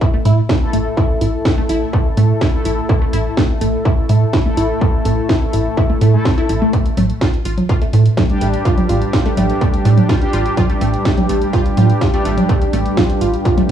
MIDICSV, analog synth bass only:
0, 0, Header, 1, 2, 480
1, 0, Start_track
1, 0, Tempo, 480000
1, 973, Time_signature, 4, 2, 24, 8
1, 13713, End_track
2, 0, Start_track
2, 0, Title_t, "Analog synth bass"
2, 0, Program_c, 0, 38
2, 252, Note_on_c, 0, 45, 98
2, 404, Note_off_c, 0, 45, 0
2, 733, Note_on_c, 0, 33, 80
2, 884, Note_off_c, 0, 33, 0
2, 1213, Note_on_c, 0, 33, 100
2, 1364, Note_off_c, 0, 33, 0
2, 1693, Note_on_c, 0, 33, 76
2, 1844, Note_off_c, 0, 33, 0
2, 2173, Note_on_c, 0, 45, 101
2, 2324, Note_off_c, 0, 45, 0
2, 2653, Note_on_c, 0, 33, 80
2, 2804, Note_off_c, 0, 33, 0
2, 3133, Note_on_c, 0, 33, 95
2, 3284, Note_off_c, 0, 33, 0
2, 3613, Note_on_c, 0, 33, 78
2, 3764, Note_off_c, 0, 33, 0
2, 4093, Note_on_c, 0, 45, 96
2, 4244, Note_off_c, 0, 45, 0
2, 4573, Note_on_c, 0, 33, 81
2, 4724, Note_off_c, 0, 33, 0
2, 5053, Note_on_c, 0, 33, 103
2, 5204, Note_off_c, 0, 33, 0
2, 5533, Note_on_c, 0, 33, 81
2, 5684, Note_off_c, 0, 33, 0
2, 6013, Note_on_c, 0, 45, 100
2, 6164, Note_off_c, 0, 45, 0
2, 6493, Note_on_c, 0, 33, 80
2, 6644, Note_off_c, 0, 33, 0
2, 6973, Note_on_c, 0, 33, 100
2, 7124, Note_off_c, 0, 33, 0
2, 7453, Note_on_c, 0, 33, 81
2, 7604, Note_off_c, 0, 33, 0
2, 7933, Note_on_c, 0, 45, 98
2, 8084, Note_off_c, 0, 45, 0
2, 8413, Note_on_c, 0, 33, 83
2, 8564, Note_off_c, 0, 33, 0
2, 8893, Note_on_c, 0, 33, 100
2, 9044, Note_off_c, 0, 33, 0
2, 9373, Note_on_c, 0, 33, 80
2, 9524, Note_off_c, 0, 33, 0
2, 9852, Note_on_c, 0, 45, 95
2, 10004, Note_off_c, 0, 45, 0
2, 10332, Note_on_c, 0, 33, 82
2, 10484, Note_off_c, 0, 33, 0
2, 10813, Note_on_c, 0, 33, 94
2, 10964, Note_off_c, 0, 33, 0
2, 11293, Note_on_c, 0, 33, 82
2, 11444, Note_off_c, 0, 33, 0
2, 11773, Note_on_c, 0, 45, 93
2, 11924, Note_off_c, 0, 45, 0
2, 12253, Note_on_c, 0, 33, 80
2, 12404, Note_off_c, 0, 33, 0
2, 12733, Note_on_c, 0, 33, 102
2, 12884, Note_off_c, 0, 33, 0
2, 13213, Note_on_c, 0, 33, 80
2, 13364, Note_off_c, 0, 33, 0
2, 13713, End_track
0, 0, End_of_file